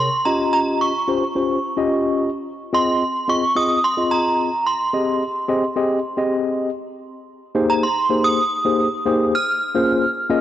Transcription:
Already playing: C6
0.25 C#4 F4 G4 D#5 A#5
0.53 A#5
0.81 C#6
1.08 C#4 F4 G4 C5
1.35 C#4 F4 G4 C5
1.77 C#4 F4 G4 D#5
2.73 C4 F4 G#4 D#5 C6
3.28 C4 F4 G#4 D#5 C#6
3.56 C4 F4 G#4 D#5 D#6
3.84 C6
3.97 C4 F4 G#4 D#5
4.11 A#5
4.67 C6
4.93 C4 G4 G#4 D#5
5.48 C4 G4 G#4 D#5
5.76 C4 G4 G#4 D#5
6.17 C4 G4 G#4 D#5
7.55 A#3 D#4 G4 G#4 C5
7.70 A#5
7.83 C6
8.10 A#3 D#4 G4 G#4 C5
8.24 D#6
8.65 A#3 D#4 G4 G#4 C5
9.06 A#3 D#4 G4 G#4 C5
9.35 F6
9.75 A#3 C#4 F4 G#4 C5
10.29 A#3 C#4 F4 G#4 D#5

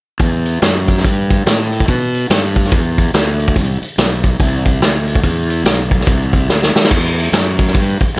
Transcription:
0.19 E2, kick, open hi-hat
0.46 open hi-hat
0.62 F#2, snare, open hi-hat
0.88 kick, open hi-hat
0.97 snare
1.05 G2, kick, open hi-hat
1.31 kick, open hi-hat
1.46 A2, snare, open hi-hat
1.73 open hi-hat
1.80 kick
1.88 B2, kick, open hi-hat
2.14 open hi-hat
2.30 G2, snare, open hi-hat
2.55 kick, open hi-hat
2.65 snare
2.72 E2, kick, open hi-hat
2.98 kick, open hi-hat
3.14 D2, snare, open hi-hat
3.40 open hi-hat
3.48 kick
3.56 C2, kick, open hi-hat
3.82 muted fingered electric bass stroke, open hi-hat
3.98 B1, snare, open hi-hat
4.24 kick, open hi-hat
4.40 C2, kick, open hi-hat
4.66 kick, open hi-hat
4.81 D2, snare, open hi-hat
5.08 open hi-hat
5.15 kick
5.24 E2, kick, open hi-hat
5.50 open hi-hat
5.64 B1, snare, open hi-hat
5.91 kick, open hi-hat
6.01 snare
6.07 C2, kick, open hi-hat
6.33 kick, open hi-hat
6.49 D2, snare
6.63 snare
6.75 muted fingered electric bass stroke, snare
6.84 snare
6.91 E2, kick, open hi-hat, crash
7.18 open hi-hat
7.32 F#2, snare, open hi-hat
7.59 kick, open hi-hat
7.67 snare
7.74 G2, kick, open hi-hat
8.00 muted fingered electric bass stroke, kick, open hi-hat

